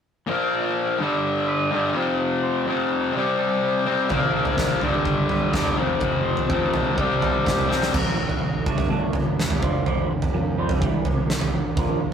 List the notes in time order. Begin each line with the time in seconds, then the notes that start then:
0.27 A#2 F3 A#3
0.51 A#4
0.76 D4
0.99 G2 D3 G3
1.24 G4
1.48 B4
1.71 G2 D3 G3 G4
1.94 F2 C3 F3
2.20 F3
2.43 C5
2.66 F2 C3 F3 C4
2.91 G3
3.13 C3 G3
3.17 C4
3.38 A4
3.63 G4
3.86 C3 G3 C4 A4
4.09 A#1 A#2 F3 A#3, kick, floor tom
4.34 A#4
4.45 floor tom
4.57 A#1 D4, kick, snare
4.81 G1 G2 D3 G3, floor tom
5.05 G1 G4, kick
5.29 G1 B4, floor tom
5.52 E1 G2 D3 G4, kick, snare, mid tom
5.56 G3
5.65 floor tom
5.75 F1 F2 C3 F3
6.01 F1 F3, kick, floor tom
6.25 C5
6.37 floor tom
6.49 F1 F2 C3 F3 C4, kick
6.73 B1 G3, floor tom, mid tom
6.97 C2 C3 G3 C4, kick
7.22 C2 A4, floor tom, mid tom
7.46 C2 G4, kick, snare, mid tom
7.59 floor tom
7.68 B1 C3 G3 C4 A4, snare
7.82 snare
7.94 A#1 A#2 F3 A#3, kick, floor tom, crash
8.17 A#2 F3
8.29 floor tom
8.42 A#1 A#2 F3
8.66 G1 G3 A3 D4, kick
8.78 floor tom
8.90 G1 G3 A3 D4
9.13 G1 G3 A3, floor tom
9.37 E1 G3 A3, snare
9.50 floor tom
9.62 F1 F3 G3 C4, kick
9.86 F1 F3 G3 C4, floor tom
10.11 F1 F3 G3
10.22 floor tom
10.34 F2 F3 G3
10.58 F3 G3 C4
10.69 floor tom
10.81 C2 C3 E3 G3, kick
11.05 C2 C3 E3, floor tom
11.29 C2 C3 E3, snare
11.41 floor tom
11.53 A1 C3 E3
11.77 A#1 A#2 F3 A#3, kick, floor tom
12.02 A#2 F3